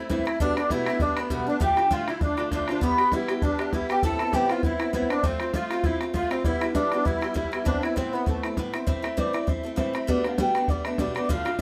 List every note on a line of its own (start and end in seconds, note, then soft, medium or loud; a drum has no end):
0.09 0.26 A2 medium
0.09 0.26 E3 medium
0.09 0.27 A3 medium
0.09 0.26 C4 medium
0.09 0.25 E4 medium
0.09 0.24 E4 medium
0.09 0.42 E5 medium
0.09 bodhran medium
0.19 bodhran soft
0.25 0.40 A3 soft
0.25 0.40 C4 soft
0.25 0.39 E4 medium
0.25 bodhran medium
0.39 0.57 B2 medium
0.39 0.57 G3 medium
0.39 0.57 A3 medium
0.39 0.57 B3 medium
0.39 0.55 D4 medium
0.39 0.56 D4 loud
0.39 0.57 D5 medium
0.39 bodhran medium
0.57 0.71 A3 soft
0.57 0.71 B3 soft
0.57 0.69 D4 medium
0.57 0.71 D4 medium
0.57 0.72 D5 medium
0.57 bodhran medium
0.70 0.87 B2 medium
0.70 0.87 G3 medium
0.70 0.88 A3 medium
0.70 0.88 B3 medium
0.70 0.86 D4 medium
0.70 1.01 E4 medium
0.70 1.03 E5 loud
0.70 bodhran medium
0.86 1.00 A3 medium
0.86 1.01 B3 soft
0.86 1.00 D4 medium
0.86 bodhran medium
1.00 1.17 G3 medium
1.00 1.17 A3 medium
1.00 1.18 B3 medium
1.00 1.18 D4 medium
1.00 1.16 D4 medium
1.00 1.19 D5 loud
1.00 bodhran medium
1.17 1.30 A3 soft
1.17 1.29 B3 medium
1.17 1.30 B3 soft
1.17 1.31 D4 medium
1.17 1.31 B4 medium
1.17 bodhran medium
1.30 1.47 B2 medium
1.30 1.47 G3 medium
1.30 1.48 A3 medium
1.30 1.46 B3 medium
1.30 1.47 B3 medium
1.30 1.45 D4 medium
1.30 1.47 B4 medium
1.30 bodhran medium
1.39 bodhran soft
1.47 1.60 A3 soft
1.47 1.61 B3 soft
1.47 1.60 D4 medium
1.47 1.55 D5 medium
1.60 1.77 D2 medium
1.60 1.77 A2 medium
1.60 1.78 D3 medium
1.60 1.77 A3 medium
1.60 1.77 D4 medium
1.60 1.75 F4 medium
1.60 1.89 G4 medium
1.60 1.94 G5 loud
1.60 bodhran medium
1.69 bodhran soft
1.76 1.90 D3 soft
1.76 1.91 A3 soft
1.76 1.91 D4 soft
1.76 1.91 F4 soft
1.76 bodhran medium
1.91 2.08 D2 medium
1.91 2.08 A2 medium
1.91 2.08 D3 medium
1.91 2.08 A3 medium
1.91 2.07 D4 medium
1.91 2.07 F4 medium
1.91 2.06 F4 medium
1.91 2.11 F5 loud
1.91 bodhran medium
2.08 2.20 D3 soft
2.08 2.21 A3 soft
2.08 2.22 D4 soft
2.08 2.20 E4 medium
2.08 2.21 F4 soft
2.08 2.24 E5 loud
2.08 bodhran medium
2.21 2.38 D3 medium
2.21 2.38 A3 medium
2.21 2.50 D4 medium
2.21 2.37 D4 medium
2.21 2.36 F4 medium
2.21 2.52 D5 medium
2.21 bodhran medium
2.37 2.51 D3 soft
2.37 2.52 A3 medium
2.37 2.52 D4 soft
2.37 2.51 F4 medium
2.37 bodhran medium
2.51 2.68 D2 medium
2.51 2.68 A2 medium
2.51 2.69 D3 medium
2.51 2.69 A3 medium
2.51 2.60 D4 medium
2.51 2.69 D4 medium
2.51 2.67 F4 medium
2.51 2.71 D5 loud
2.51 bodhran medium
2.60 2.70 D4 medium
2.60 bodhran soft
2.68 2.81 D3 soft
2.68 2.82 A3 soft
2.68 2.82 D4 soft
2.68 2.81 D4 medium
2.68 2.82 F4 medium
2.68 2.84 C5 medium
2.68 bodhran medium
2.81 2.98 E3 medium
2.81 2.99 G3 medium
2.81 3.09 B3 medium
2.81 2.98 B3 medium
2.81 2.97 G4 medium
2.81 3.14 B4 loud
2.81 bodhran medium
2.98 3.12 G3 soft
2.98 3.12 B3 soft
2.98 3.12 G4 soft
2.98 bodhran medium
3.12 3.29 E3 medium
3.12 3.29 G3 medium
3.12 3.29 B3 medium
3.12 3.35 E4 medium
3.12 3.28 G4 medium
3.12 3.45 E5 loud
3.12 bodhran medium
3.28 3.42 G3 soft
3.28 3.43 B3 soft
3.28 3.42 G4 medium
3.28 bodhran medium
3.36 3.42 E4 medium
3.41 3.59 E3 medium
3.41 3.60 G3 medium
3.41 3.59 B3 medium
3.41 3.73 D4 medium
3.41 3.57 G4 medium
3.41 3.61 D5 loud
3.41 bodhran medium
3.59 3.72 G3 soft
3.59 3.73 B3 soft
3.59 3.72 G4 soft
3.59 3.72 E5 medium
3.59 bodhran medium
3.72 3.89 E3 medium
3.72 3.90 G3 medium
3.72 3.90 B3 medium
3.72 3.88 E4 medium
3.72 3.88 G4 medium
3.72 3.93 E5 medium
3.72 bodhran medium
3.81 bodhran soft
3.89 4.04 G3 soft
3.89 4.03 B3 medium
3.89 4.03 G4 soft
3.89 4.02 G4 medium
3.89 4.03 G5 loud
3.89 bodhran medium
4.02 4.20 A2 medium
4.02 4.20 E3 medium
4.02 4.20 B3 medium
4.02 4.20 C4 medium
4.02 4.19 E4 medium
4.02 4.33 A4 medium
4.02 4.36 A5 loud
4.02 bodhran medium
4.11 bodhran soft
4.19 4.33 B3 soft
4.19 4.33 C4 soft
4.19 4.33 E4 medium
4.19 bodhran medium
4.32 4.50 A2 medium
4.32 4.50 E3 medium
4.32 4.50 B3 medium
4.32 4.49 C4 medium
4.32 4.48 E4 medium
4.32 4.50 G4 medium
4.32 4.52 G5 loud
4.32 bodhran medium
4.49 4.63 B3 soft
4.49 4.64 C4 medium
4.49 4.63 E4 medium
4.49 4.62 F4 medium
4.49 4.64 F5 loud
4.49 bodhran medium
4.63 4.80 E3 soft
4.63 4.81 B3 medium
4.63 4.80 C4 medium
4.63 4.91 E4 medium
4.63 4.78 E4 medium
4.63 4.92 E5 loud
4.63 bodhran medium
4.79 4.93 B3 soft
4.79 4.93 C4 soft
4.79 4.93 E4 soft
4.79 bodhran medium
4.92 5.10 A2 medium
4.92 5.10 E3 medium
4.92 5.10 B3 medium
4.92 5.11 C4 medium
4.92 5.08 E4 medium
4.92 5.09 E4 medium
4.92 5.09 E5 medium
4.92 bodhran medium
5.02 bodhran soft
5.10 5.23 B3 soft
5.10 5.23 C4 soft
5.10 5.24 D4 medium
5.10 5.24 E4 medium
5.10 5.27 D5 loud
5.10 bodhran medium
5.23 5.40 F3 medium
5.23 5.40 A3 medium
5.23 5.52 C4 medium
5.23 5.40 C4 medium
5.23 5.39 F4 medium
5.23 5.56 C5 loud
5.23 bodhran medium
5.32 bodhran soft
5.40 5.54 A3 soft
5.40 5.54 C4 soft
5.40 5.54 F4 soft
5.40 bodhran medium
5.53 5.71 F3 medium
5.53 5.71 A3 medium
5.53 5.71 C4 medium
5.53 5.85 F4 medium
5.53 5.69 F4 medium
5.53 5.87 F5 loud
5.53 bodhran medium
5.71 5.83 A3 medium
5.71 5.84 C4 medium
5.71 5.84 F4 medium
5.71 bodhran medium
5.83 6.01 F3 medium
5.83 6.01 A3 medium
5.83 6.01 C4 soft
5.83 5.99 E4 medium
5.83 5.99 F4 medium
5.83 6.01 E5 medium
5.83 bodhran medium
6.01 6.13 A3 soft
6.01 6.14 C4 medium
6.01 6.14 F4 medium
6.01 bodhran medium
6.13 6.31 F3 medium
6.13 6.31 A3 medium
6.13 6.31 C4 medium
6.13 6.29 F4 medium
6.13 6.33 F5 loud
6.13 bodhran medium
6.23 bodhran soft
6.30 6.45 A3 soft
6.30 6.43 C4 medium
6.30 6.45 C4 medium
6.30 6.44 F4 medium
6.30 6.46 C5 medium
6.30 bodhran medium
6.44 6.61 E3 medium
6.44 6.62 G3 medium
6.44 6.61 B3 medium
6.44 6.72 E4 medium
6.44 6.60 E4 medium
6.44 6.77 E5 loud
6.44 bodhran medium
6.53 bodhran soft
6.61 6.74 G3 soft
6.61 6.75 B3 soft
6.61 6.75 E4 medium
6.61 bodhran medium
6.74 6.92 E3 medium
6.74 6.92 G3 medium
6.74 6.92 B3 medium
6.74 6.82 D4 medium
6.74 6.91 E4 medium
6.74 7.07 D5 loud
6.74 bodhran medium
6.84 6.93 D4 medium
6.92 7.05 G3 medium
6.92 7.05 B3 medium
6.92 7.04 D4 medium
6.92 7.05 E4 soft
6.92 bodhran medium
7.04 7.22 E3 medium
7.04 7.22 G3 medium
7.04 7.22 B3 medium
7.04 7.34 E4 medium
7.04 7.20 E4 medium
7.04 7.35 E5 loud
7.04 bodhran medium
7.21 7.33 G3 soft
7.21 7.34 B3 soft
7.21 7.35 E4 medium
7.21 bodhran medium
7.34 7.52 E3 medium
7.34 7.52 G3 medium
7.34 7.52 B3 medium
7.34 7.67 E4 medium
7.34 7.50 E4 medium
7.34 7.68 E5 medium
7.34 bodhran medium
7.44 bodhran soft
7.52 7.66 G3 soft
7.52 7.65 B3 soft
7.52 7.65 E4 medium
7.52 bodhran medium
7.65 7.82 A2 medium
7.65 7.82 E3 medium
7.65 7.83 B3 medium
7.65 7.83 C4 medium
7.65 7.83 D4 medium
7.65 7.81 E4 medium
7.65 7.82 D5 medium
7.65 bodhran medium
7.75 bodhran soft
7.82 7.96 B3 soft
7.82 7.96 C4 soft
7.82 7.95 E4 medium
7.82 7.96 E4 soft
7.82 7.97 E5 medium
7.82 bodhran medium
7.96 8.13 A2 medium
7.96 8.13 E3 medium
7.96 8.13 B3 medium
7.96 8.13 C4 medium
7.96 8.12 E4 medium
7.96 8.14 C5 medium
7.96 bodhran medium
8.11 8.26 B3 medium
8.11 8.26 B3 soft
8.11 8.27 C4 soft
8.11 8.26 E4 medium
8.11 8.26 B4 medium
8.25 8.43 E3 medium
8.25 8.54 A3 medium
8.25 8.43 B3 medium
8.25 8.44 C4 medium
8.25 8.42 E4 medium
8.25 8.53 A4 medium
8.25 bodhran medium
8.43 8.57 B3 soft
8.43 8.57 C4 soft
8.43 8.57 E4 medium
8.43 bodhran medium
8.57 8.74 A2 medium
8.57 8.74 E3 medium
8.57 8.74 B3 medium
8.57 8.74 C4 medium
8.57 8.72 E4 medium
8.57 bodhran medium
8.73 8.87 B3 soft
8.73 8.86 C4 medium
8.73 8.87 E4 medium
8.73 8.88 C5 medium
8.73 bodhran medium
8.87 9.03 A2 medium
8.87 9.04 E3 medium
8.87 9.02 A3 medium
8.87 9.04 C4 medium
8.87 9.01 E4 medium
8.87 9.20 E5 medium
8.87 bodhran medium
8.96 bodhran soft
9.02 9.17 A3 soft
9.02 9.16 C4 soft
9.02 9.16 E4 medium
9.02 bodhran medium
9.17 9.34 A2 medium
9.17 9.34 E3 medium
9.17 9.33 A3 medium
9.17 9.34 C4 medium
9.17 9.32 E4 medium
9.17 9.42 D5 medium
9.17 bodhran medium
9.33 9.48 A3 soft
9.33 9.47 C4 soft
9.33 9.47 E4 medium
9.33 bodhran medium
9.42 9.50 D5 medium
9.47 9.64 E3 medium
9.47 9.63 A3 medium
9.47 9.64 C4 soft
9.47 9.62 E4 medium
9.47 9.74 E5 medium
9.47 bodhran medium
9.63 9.76 A3 soft
9.63 9.76 C4 soft
9.63 9.77 E4 medium
9.74 9.93 A2 medium
9.74 9.94 E3 medium
9.74 9.94 A3 medium
9.74 9.94 C4 medium
9.74 9.92 E4 medium
9.74 9.81 F5 medium
9.74 bodhran medium
9.79 9.95 E5 medium
9.93 10.08 A3 medium
9.93 10.08 C4 soft
9.93 10.07 E4 soft
9.93 10.11 E5 medium
9.93 bodhran medium
10.07 10.24 B2 medium
10.07 10.25 G3 medium
10.07 10.25 A3 medium
10.07 10.25 B3 medium
10.07 10.23 D4 medium
10.07 10.25 D5 loud
10.07 bodhran medium
10.16 bodhran soft
10.24 10.39 A3 soft
10.24 10.38 B3 soft
10.24 10.38 D4 soft
10.24 10.32 F5 medium
10.24 bodhran medium
10.38 10.55 B2 medium
10.38 10.55 G3 medium
10.38 10.55 A3 medium
10.38 10.55 B3 medium
10.38 10.54 D4 medium
10.38 10.70 G5 loud
10.38 bodhran medium
10.55 10.69 A3 soft
10.55 10.69 B3 soft
10.55 10.68 D4 medium
10.55 bodhran medium
10.68 10.85 G3 soft
10.68 10.85 A3 medium
10.68 10.86 B3 medium
10.68 10.84 D4 medium
10.68 10.87 D5 loud
10.68 bodhran medium
10.85 10.99 A3 soft
10.85 10.98 B3 soft
10.85 10.98 D4 medium
10.85 11.01 E5 medium
10.85 bodhran medium
10.98 11.15 B2 medium
10.98 11.15 G3 medium
10.98 11.15 A3 medium
10.98 11.16 B3 medium
10.98 11.13 D4 medium
10.98 11.15 D5 medium
10.98 bodhran medium
11.07 bodhran soft
11.15 11.29 A3 soft
11.15 11.30 B3 soft
11.15 11.28 D4 medium
11.15 11.30 D5 medium
11.15 bodhran medium
11.29 11.45 D2 medium
11.29 11.46 A2 medium
11.29 11.46 D3 medium
11.29 11.46 A3 medium
11.29 11.45 D4 medium
11.29 11.44 F4 loud
11.29 11.60 F5 loud
11.29 bodhran medium
11.45 11.58 D3 soft
11.45 11.59 A3 soft
11.45 11.59 D4 medium
11.45 11.59 F4 medium
11.45 bodhran medium